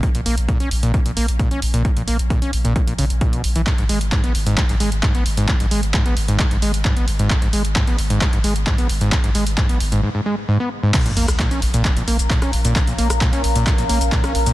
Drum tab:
CC |----------------|----------------|----------------|----------------|
HH |xxoxxxoxxxoxxxox|xxoxxxoxxxoxxxox|xxoxxxoxxxoxxxox|xxoxxxoxxxoxxxox|
SH |----------------|----------------|----------------|----------------|
CP |----------------|----------------|x---x---x---x---|x---x---x---x---|
SD |----------------|----------------|----------------|----------------|
BD |o---o---o---o---|o---o---o---o---|o---o---o---o---|o---o---o---o---|

CC |----------------|----------------|x---------------|----------------|
HH |xxoxxxoxxxoxxxox|xxoxxxox--------|xxoxxxoxxxoxxxox|xxoxxxoxxxoxxxox|
SH |----------------|----------------|xx-xxx-xxx-xxx-x|xx-xxx-xxx-xxx-x|
CP |x---x---x---x---|x---x-----------|x---x---x---x---|x---x---x---x---|
SD |----------------|----------------|---r---------r--|---r---------r--|
BD |o---o---o---o---|o---o-----------|o---o---o---o---|o---o---o---o---|